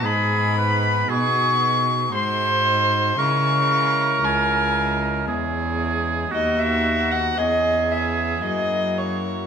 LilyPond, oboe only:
\new Staff \with { instrumentName = "Oboe" } { \time 3/4 \key cis \dorian \tempo 4 = 57 gis'8 b'8 gis'8. r16 bis'4 | ais'2 gis'4 | fis'4 gis'4.~ gis'16 r16 | }